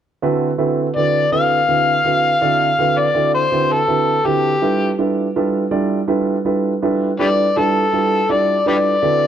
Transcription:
0.22 D3 C4 E4 F#4 A4 B4
0.58 D3 C4 E4 F#4 A4 B4
0.96 D3 C4 E4 F#4 A4 B4 D5
1.32 D3 C4 E4 F#4 A4 B4 F5
1.68 D3 C4 E4 F#4 A4 B4
2.04 D3 C4 E4 F#4 A4 B4
2.41 D3 C4 E4 F#4 A4 D5
2.78 D3 C4 E4 F#4 A4 B4
2.99 D5
3.14 D3 C4 E4 F#4 A4 D5
3.34 C5
3.51 D3 C4 E4 F#4 A4 B4
3.72 A4
3.88 D3 C4 E4 F#4 A4 B4
4.25 D3 C4 E4 F#4 G4 A4 B4
4.62 G3 D4 E4 F4 A4 B4
4.99 G3 D4 E4 F4 A4 B4
5.36 G3 D4 E4 F4 A4 B4
5.71 G3 D4 E4 F4 A4 D5
6.08 G3 D4 E4 F4 A4 B4
6.45 G3 D4 E4 F4 A4 B4
6.82 G3 D4 E4 F4 A4 B4
7.19 G3 D4 E4 F4 G4 A4 B4 D5
7.57 G3 D4 E4 F4 A4 B4
7.93 G3 D4 E4 F4 A4 B4
8.29 G3 D4 E4 F4 A4 D5
8.66 G3 D4 E4 F4 G4 A4 B4 D5
9.02 D3 C4 E4 F#4 A4 B4

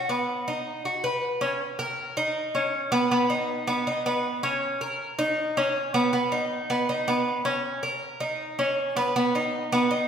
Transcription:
0.09 B3
0.48 D#4
0.85 F#4
1.04 B4
1.41 C#4
1.79 A#4
2.17 D#4
2.55 C#4
2.92 B3
3.11 B3
3.30 D#4
3.67 B3
3.87 D#4
4.06 B3
4.43 C#4
4.81 A#4
5.19 D#4
5.57 C#4
5.94 B3
6.13 B3
6.32 D#4
6.70 B3
6.89 D#4
7.08 B3
7.45 C#4
7.83 A#4
8.20 D#4
8.59 C#4
8.96 B3
9.16 B3
9.35 D#4
9.72 B3
9.91 D#4

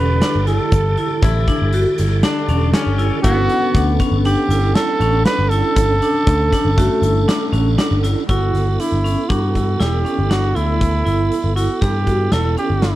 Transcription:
Already playing: E1 D3 C#4 D4 G4 A4 B4
0.22 D4, snare, closed hi-hat, shaker
0.35 G1
0.47 E4 A4, snare, closed hi-hat
0.72 G1, kick, closed hi-hat, shaker
0.97 E4, closed hi-hat
1.22 A1 E4, kick, closed hi-hat
1.48 D4, kick, closed hi-hat
1.62 G1
1.73 F#4, closed hi-hat
1.98 G1 E4, snare, closed hi-hat, shaker
2.23 D4, snare, closed hi-hat
2.49 E1 C#4, closed hi-hat
2.74 C#4 D4, snare, closed hi-hat, shaker
2.87 G1
2.98 E4, closed hi-hat
3.23 G1 B3 C#4 D4 E4 F#4 A4, kick, closed hi-hat, shaker
3.49 closed hi-hat
3.75 D2 D4, kick, snare, closed hi-hat
4.00 C#4, kick, closed hi-hat
4.11 G1
4.25 D4 G4, closed hi-hat
4.49 G1 E4, snare, closed hi-hat, shaker
4.75 E4 A4, snare, closed hi-hat
5.00 A1 C#4, closed hi-hat
5.25 D4 B4, snare, closed hi-hat, shaker
5.39 G1
5.49 E4 A4, closed hi-hat
5.76 G1, kick, closed hi-hat, shaker
6.02 D4, closed hi-hat
6.27 D2, kick, closed hi-hat
6.53 D4, kick, snare, closed hi-hat
6.65 G1
6.77 A3 F#4, kick, snare, closed hi-hat
7.02 G1 E4, closed hi-hat, shaker
7.28 D4, snare, closed hi-hat, shaker
7.53 A1 C#4, closed hi-hat
7.78 D4, snare, closed hi-hat, shaker
7.91 G1
8.04 E4, snare, closed hi-hat
8.29 G1 B3 E4 F#4 A4, kick, closed hi-hat
8.54 G1, snare, closed hi-hat
8.80 D4 E4, closed hi-hat
8.92 G1
9.04 C#4, closed hi-hat
9.29 G2 D4 F#4, kick, closed hi-hat
9.55 E4, kick, closed hi-hat
9.80 E1 E4 G4, snare, closed hi-hat
10.05 C#4, closed hi-hat
10.19 G1
10.30 D4 F#4, snare, closed hi-hat
10.55 D2 E4, closed hi-hat
10.81 kick, closed hi-hat
11.05 G1 E4, closed hi-hat
11.32 closed hi-hat
11.44 G1
11.56 E4 F#4, closed hi-hat
11.81 G2 G4, kick, snare, closed hi-hat
12.06 F#4, kick, closed hi-hat
12.32 E1 E4 A4, snare, closed hi-hat
12.57 C#4 G4, closed hi-hat
12.70 G1
12.82 D4, snare, closed hi-hat

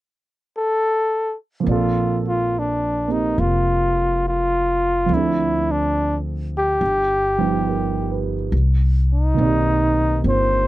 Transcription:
0.57 A4
1.60 F3 A#3
1.66 A#1 C4 F4 D5
1.71 A4
2.28 F4
2.59 D4
3.08 A#3 C4 G4
3.12 D#4
3.38 F1 F4
4.28 F4
5.06 D2 F3 A3
5.11 C4 D4 E4
5.17 A4
5.71 D4
6.57 G4
6.81 G1
7.38 F3 G3 B3 D#4 G4
7.69 A#4
8.11 B4
8.52 C2
9.13 D#4
9.34 D#3 A#3
9.38 B1 C4 D5
9.45 G4
10.24 G1 A#3 C4 F4
10.29 C5

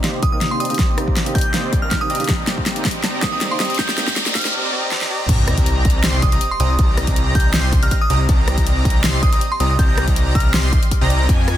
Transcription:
Already playing: C3 A#3 D#4, riser
0.02 D#3 A#3 C4 G4 D5 D#5 C6, snare, closed hi-hat
0.23 D#6, kick, closed hi-hat
0.32 D#3 A#3 C4 G4 A#4 D5 D#5 A#5 D#6
0.41 snare, closed hi-hat
0.50 D#3 A#3 C4 G4 C6
0.60 C4 G4 D5 D#5 A#5 D#6, closed hi-hat
0.65 D#3, closed hi-hat
0.70 A#3 C4 G4 D#6, closed hi-hat
0.74 closed hi-hat
0.79 C4 G4 D5 D#5 A#5, kick, snare, closed hi-hat
0.96 D#3 A#3 C4 G4, cross-stick, closed hi-hat
1.08 C4 G4 D5 D#5 A#5, kick
1.17 snare, closed hi-hat
1.25 D#3 A#3 C4 G4, closed hi-hat
1.35 C4 G4 D5 D#5 A#5 G6, kick, closed hi-hat
1.38 closed hi-hat
1.41 closed hi-hat
1.53 D#3 A#3 C4 G4 D5 D#5 C6, snare, closed hi-hat
1.73 kick, closed hi-hat
1.82 D#3 A#3 C4 G4 A#4 D5 D#5 A#5 F6
1.91 F6, kick, snare, closed hi-hat
2.00 D#3 A#3 C4 G4 D#6
2.10 C4 G4 D5 D#5 A#5 D#6, closed hi-hat
2.15 D#3, closed hi-hat
2.20 A#3 C4 G4, closed hi-hat
2.24 closed hi-hat
2.29 C4 D5 D#5 A#5, kick, snare, closed hi-hat
2.47 D#3 A#3 C4 G4, snare, closed hi-hat
2.57 C4 G4 D5 D#5 A#5, kick
2.66 snare, closed hi-hat
2.75 D#3 A#3 C4 G4, closed hi-hat
2.85 kick, snare, closed hi-hat
2.88 closed hi-hat
2.91 closed hi-hat
3.04 C4 G4 D5 D#5 A#5, snare, closed hi-hat
3.22 D#3 A#3 C4 G4 D#6, kick, snare, closed hi-hat
3.32 C4 G4 D5 D#5 A#5 D#6
3.41 snare, closed hi-hat
3.50 D#3 A#3 C4 G4 C6
3.60 C4 G4 D5 D#5 A#5 D#6, snare, closed hi-hat
3.65 closed hi-hat
3.70 D#6, closed hi-hat
3.74 closed hi-hat
3.79 G4 D5 D#5 A#5 G6, kick, snare, closed hi-hat
3.89 G6, snare
3.97 D#3 A#3 C4 G4, snare, closed hi-hat
4.07 C4 G4 D#5 A#5, kick, snare
4.16 C4 G4 D5 D#5 A#5, snare, closed hi-hat
4.26 snare, closed hi-hat
4.34 D#3 A#3 C4 G4 F6, kick, snare, closed hi-hat
4.38 closed hi-hat
4.41 C4 G4 D5 D#5 A#5, snare, closed hi-hat
4.54 C4 G4 D5 D#5 A#5
4.73 C4 G4 D5 D#5 A#5
4.91 C4 G4 D5 D#5 A#5, snare
5.01 snare
5.10 C4 G4 D5 D#5 A#5
5.20 mid tom
5.29 C2 C4 A#5, kick, closed hi-hat, crash, sub drop
5.48 cross-stick, closed hi-hat
5.58 C2 C4 G4 D5 D#5 A#5, kick, closed hi-hat
5.66 closed hi-hat
5.85 C2 C4 G4 D5 D#5 A#5, kick, closed hi-hat
5.90 closed hi-hat
6.03 C2 C4 G4 D5 D#5 C6, snare, closed hi-hat
6.22 D#6, kick, closed hi-hat
6.32 C2 C4 G4 D5 D#5 A#5 D#6, closed hi-hat
6.41 closed hi-hat
6.51 C6
6.60 C2 C4 G4 D5 D#5 A#5 D#6, closed hi-hat
6.70 D#6
6.79 C2 C4 G4 D5 D#5 A#5, kick, closed hi-hat
6.97 cross-stick, closed hi-hat
7.07 C2 C4 G4 D5 D#5 A#5, kick, closed hi-hat
7.16 closed hi-hat
7.35 C2 A#5 G6, kick, closed hi-hat
7.40 closed hi-hat
7.54 C2 C4 G4 D5 D#5 C6, snare, closed hi-hat
7.73 kick, closed hi-hat
7.82 C2 C4 G4 D5 D#5 A#5 F6, closed hi-hat
7.91 F6, kick, closed hi-hat
8.01 D#6
8.10 C2 C4 G4 D5 D#5 A#5 D#6, closed hi-hat
8.29 C2 C4 G4 D5 D#5 A#5, kick, closed hi-hat
8.48 cross-stick, closed hi-hat
8.58 C2 C4 G4 D5 D#5 A#5, kick, closed hi-hat
8.67 closed hi-hat
8.85 C2 C4 G4 D5 D#5 A#5, kick, closed hi-hat
8.90 closed hi-hat
9.04 C2 C4 G4 D5 D#5 C6, snare, closed hi-hat
9.23 D#6, kick, closed hi-hat
9.32 C2 C4 G4 D5 D#5 A#5 D#6, closed hi-hat
9.41 closed hi-hat
9.52 C6
9.60 C2 C4 G4 D5 D#5 A#5 D#6, closed hi-hat
9.70 D#6
9.79 C2 C4 G4 D5 D#5 A#5 G6, kick, closed hi-hat
9.89 G6
9.98 cross-stick, closed hi-hat
10.07 C2 C4 G4 D5 D#5 A#5, kick, closed hi-hat
10.16 closed hi-hat
10.35 C2 C4 G4 D#5 A#5 F6, kick, closed hi-hat
10.40 closed hi-hat
10.54 C2 C4 G4 D5 D#5 C6, snare, closed hi-hat
10.73 kick, closed hi-hat
10.83 closed hi-hat
10.91 kick, closed hi-hat
11.01 C2 C4 G4 D5 D#5 A#5
11.10 closed hi-hat
11.29 F2 F3 F4 D#5 G5 G#5, kick, closed hi-hat
11.48 cross-stick, closed hi-hat

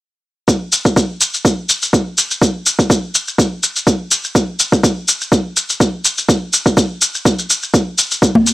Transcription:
0.48 kick, shaker
0.72 shaker
0.85 kick, shaker
0.96 kick, shaker
1.21 shaker
1.34 shaker
1.45 kick, shaker
1.69 shaker
1.82 shaker
1.93 kick, shaker
2.18 shaker
2.31 shaker
2.42 kick, shaker
2.66 shaker
2.79 kick, shaker
2.90 kick, shaker
3.15 shaker
3.28 shaker
3.38 kick, shaker
3.63 shaker
3.76 shaker
3.87 kick, shaker
4.11 shaker
4.24 shaker
4.35 kick, shaker
4.60 shaker
4.72 kick, shaker
4.84 kick, shaker
5.08 shaker
5.21 shaker
5.32 kick, shaker
5.57 shaker
5.70 shaker
5.80 kick, shaker
6.05 shaker
6.18 shaker
6.29 kick, shaker
6.53 shaker
6.66 kick, shaker
6.77 kick, shaker
7.02 shaker
7.15 shaker
7.25 kick, shaker
7.39 shaker
7.50 shaker
7.63 shaker
7.74 kick, shaker
7.98 shaker
8.11 shaker
8.22 kick, shaker
8.35 muted conga
8.47 shaker

